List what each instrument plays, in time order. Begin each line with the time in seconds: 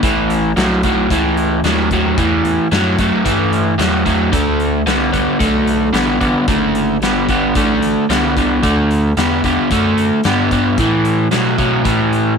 0.03 analog synth bass A1, overdriven electric guitar A2 E3, kick, closed hi-hat
0.30 closed hi-hat
0.56 analog synth bass B1, overdriven electric guitar A2 F#3, snare, closed hi-hat
0.83 overdriven electric guitar A2 F#3, kick, closed hi-hat
1.10 analog synth bass C#2, overdriven electric guitar A2 E3, kick, closed hi-hat
1.37 closed hi-hat
1.64 analog synth bass D#2, overdriven electric guitar A2 F#3, snare, closed hi-hat
1.91 overdriven electric guitar A2 F#3, kick, closed hi-hat
2.18 analog synth bass E2, overdriven electric guitar A2 E3, kick, closed hi-hat
2.45 analog synth bass E2, closed hi-hat
2.71 analog synth bass F#2, overdriven electric guitar A2 F#3, snare, closed hi-hat
2.98 analog synth bass F#2, overdriven electric guitar A2 F#3, kick, closed hi-hat
3.24 analog synth bass G2, overdriven electric guitar A2 E3, kick, closed hi-hat
3.53 closed hi-hat
3.78 analog synth bass E2, overdriven electric guitar A2 F#3, snare, closed hi-hat
4.06 overdriven electric guitar A2 F#3, kick, closed hi-hat
4.32 analog synth bass D2, overdriven electric guitar D3 A3, kick, closed hi-hat
4.60 closed hi-hat
4.86 analog synth bass C2, overdriven electric guitar D3 B3, snare, closed hi-hat
5.12 analog synth bass C2, overdriven electric guitar D3 B3, kick, closed hi-hat
5.39 analog synth bass B1, overdriven electric guitar D3 A3, kick, closed hi-hat
5.67 closed hi-hat
5.93 analog synth bass A1, overdriven electric guitar D3 B3, snare, closed hi-hat
6.20 analog synth bass A1, overdriven electric guitar D3 B3, kick, closed hi-hat
6.48 analog synth bass F#1, overdriven electric guitar D3 A3, kick, closed hi-hat
6.75 closed hi-hat
7.01 analog synth bass G1, overdriven electric guitar D3 B3, snare, closed hi-hat
7.29 overdriven electric guitar D3 B3, kick, closed hi-hat
7.55 analog synth bass A1, overdriven electric guitar D3 A3, kick, closed hi-hat
7.82 analog synth bass A1, closed hi-hat
8.09 analog synth bass C2, overdriven electric guitar D3 B3, snare, closed hi-hat
8.37 overdriven electric guitar D3 B3, kick, closed hi-hat
8.63 analog synth bass D2, overdriven electric guitar D3 A3, kick, closed hi-hat
8.91 closed hi-hat
9.17 analog synth bass E2, overdriven electric guitar D3 B3, snare, closed hi-hat
9.44 analog synth bass E2, overdriven electric guitar D3 B3, kick, closed hi-hat
9.70 analog synth bass F#2, overdriven electric guitar D3 A3, kick, closed hi-hat
9.97 analog synth bass F#2, closed hi-hat
10.23 analog synth bass G2, overdriven electric guitar D3 B3, snare, closed hi-hat
10.51 overdriven electric guitar D3 B3, kick, closed hi-hat
10.78 analog synth bass A2, overdriven electric guitar A2 E3, kick, closed hi-hat
11.05 closed hi-hat
11.31 overdriven electric guitar A2 F#3, analog synth bass B2, snare, closed hi-hat
11.58 overdriven electric guitar A2 F#3, kick, closed hi-hat
11.85 overdriven electric guitar A2 E3, analog synth bass A2, kick, closed hi-hat
12.13 closed hi-hat